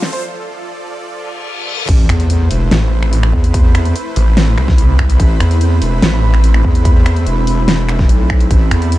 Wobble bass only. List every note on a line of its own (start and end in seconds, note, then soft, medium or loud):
1.89 2.08 A1 loud
2.09 2.49 E2 loud
2.51 2.70 E1 loud
3.33 3.94 E2 medium
5.20 5.39 A1 loud
5.40 5.80 E2 loud
5.82 6.01 E1 loud
6.64 7.25 E2 loud
7.26 8.08 E1 loud
8.09 8.49 B1 loud
8.51 8.70 A1 loud
8.71 8.98 E2 loud